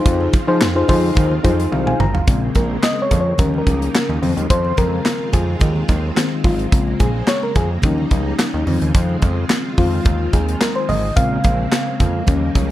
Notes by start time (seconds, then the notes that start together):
Already playing: C#3 G#3 C4 D#4 F4 G#4 C5
0.06 F2, kick, closed hi-hat, muted conga
0.21 muted conga
0.33 kick, closed hi-hat, high conga
0.47 F3 D#4 F4 G#4 C5
0.61 F2, snare, clap, closed hi-hat, muted conga
0.75 D#4 F4 G#4 C5, muted conga
0.88 F2 D#3 D#4 F4 G#4 C5, kick, open hi-hat, low conga
1.15 D#2, kick, closed hi-hat, muted conga, high conga, low conga
1.31 muted conga
1.43 F2 D#4 F4 G#4 C5, kick, closed hi-hat, high conga
1.60 closed hi-hat
1.72 C2 F5, high tom, high conga
1.87 F5 G#5, mid tom
2.00 G#1 A#5, mid tom, high conga, low conga
2.14 F5, floor tom
2.27 A#1 C#3 G#3 A#3 C4, kick, closed hi-hat
2.55 A#1 A#4, kick, closed hi-hat, high conga
2.83 D#5, snare, clap, closed hi-hat, muted conga
2.98 C#5, muted conga
3.11 F2, kick, closed hi-hat, low conga
3.20 C#5
3.38 D#2 C#3 F3 G3 A#3 C#4 D#4 A#4, kick, closed hi-hat, muted conga, high conga, low conga
3.54 muted conga
3.58 A#4
3.67 C#2, kick, closed hi-hat, high conga
3.82 closed hi-hat
3.95 snare, clap, closed hi-hat
4.09 D#2, muted conga
4.22 F2 D#3 F3 G#3 C4 F4, open hi-hat, high conga, low conga
4.37 D#2, closed hi-hat
4.50 F2 C5, kick, closed hi-hat, muted conga
4.65 muted conga
4.77 F2 A#4, kick, closed hi-hat, high conga
5.05 snare, clap, closed hi-hat, muted conga
5.20 muted conga
5.33 F2 D#3 C4 G#4, kick, closed hi-hat, low conga
5.60 D#2, kick, closed hi-hat, muted conga, high conga, low conga
5.76 muted conga
5.89 D#2, kick, closed hi-hat, high conga
6.16 D#3 G#3 C4, snare, clap, closed hi-hat, muted conga
6.32 muted conga
6.44 G#1 F4, kick, open hi-hat, high conga, low conga
6.59 closed hi-hat
6.72 A#1 C#3 G#3 A#3 C4, kick, closed hi-hat
6.87 muted conga
7.00 A#1 G#4, kick, closed hi-hat, high conga
7.27 C#5, snare, clap, closed hi-hat, muted conga
7.43 A#4, muted conga
7.55 F2 G#4, kick, closed hi-hat, low conga
7.82 D#2 C#3 F3 G3 C#4 D#4, kick, closed hi-hat, muted conga, high conga, low conga
7.98 muted conga
8.11 C#2, kick, closed hi-hat, high conga
8.39 snare, clap, closed hi-hat, muted conga
8.54 D#2, muted conga
8.66 F2 D#3 F3 G#3 C4 F4, open hi-hat, high conga, low conga
8.82 D#2, closed hi-hat
8.95 F2, kick, closed hi-hat, muted conga
9.09 muted conga
9.22 F2, kick, closed hi-hat, high conga
9.50 snare, clap, closed hi-hat
9.78 F2 D#3 G#3 C4 F4, kick, open hi-hat, low conga
10.05 D#2, kick, closed hi-hat, muted conga, high conga, low conga
10.33 D#2 G#4, kick, closed hi-hat, high conga
10.48 closed hi-hat
10.61 A#4, snare, clap, closed hi-hat, high conga
10.76 C5
10.89 G#1 D#5, open hi-hat, high conga, low conga
11.16 A#1 C#3 G#3 A#3 C4 F5, kick, closed hi-hat, muted conga
11.44 A#1, kick, closed hi-hat, high conga
11.72 snare, clap, closed hi-hat
11.87 muted conga
12.00 F2, kick, closed hi-hat, low conga
12.27 D#2 C#3 F3 G3 C#4 D#4, kick, closed hi-hat, high conga, low conga
12.55 C#2, kick, closed hi-hat, high conga